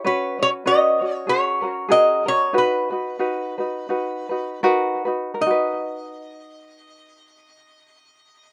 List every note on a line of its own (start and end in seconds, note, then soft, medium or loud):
0.04 0.39 C#4 medium
0.04 0.39 F#4 medium
0.04 0.39 B4 medium
0.04 0.38 B4 medium
0.04 0.38 C#5 medium
0.39 0.65 C#4 soft
0.39 0.65 F#4 soft
0.39 0.65 C#5 medium
0.39 0.49 C#5 loud
0.66 1.00 C#4 medium
0.66 1.00 F#4 medium
0.66 1.00 B4 medium
0.66 1.00 C#5 medium
0.66 1.14 D#5 medium
1.01 1.27 C#4 soft
1.01 1.27 F#4 soft
1.01 1.27 C#5 medium
1.14 1.29 C#5 medium
1.27 1.62 C#4 medium
1.27 1.62 F#4 medium
1.27 1.62 G#4 medium
1.27 1.61 A#4 medium
1.27 1.92 C#5 medium
1.62 1.88 C#4 soft
1.62 1.89 F#4 medium
1.62 1.88 A#4 medium
1.88 2.25 C#4 medium
1.88 2.25 F#4 medium
1.88 2.25 G#4 medium
1.88 2.24 A#4 medium
1.88 2.24 D#5 medium
2.26 2.53 C#4 soft
2.26 2.53 F#4 soft
2.26 2.53 A#4 medium
2.26 2.55 C#5 medium
2.53 2.90 D#4 medium
2.53 2.91 F#4 medium
2.53 2.89 B4 medium
2.58 4.60 B4 medium
2.90 3.18 D#4 soft
2.90 3.18 F#4 soft
2.90 3.19 B4 medium
3.19 3.59 D#4 medium
3.19 3.57 F#4 medium
3.19 3.57 B4 medium
3.58 3.88 D#4 medium
3.58 3.89 F#4 medium
3.58 3.88 B4 medium
3.89 4.30 D#4 medium
3.89 4.30 F#4 medium
3.89 4.28 B4 medium
4.29 4.62 D#4 soft
4.29 4.62 F#4 medium
4.29 4.61 B4 medium
4.63 5.06 D#4 loud
4.63 5.05 F#4 loud
4.63 5.06 A#4 loud
4.63 5.04 B4 loud
5.05 5.40 D#4 medium
5.05 5.40 F#4 medium
5.05 5.34 B4 medium
5.34 8.53 A#4 medium
5.41 8.53 D#4 medium
5.41 8.53 D#5 medium
5.46 8.53 F#4 medium
5.50 8.53 B4 medium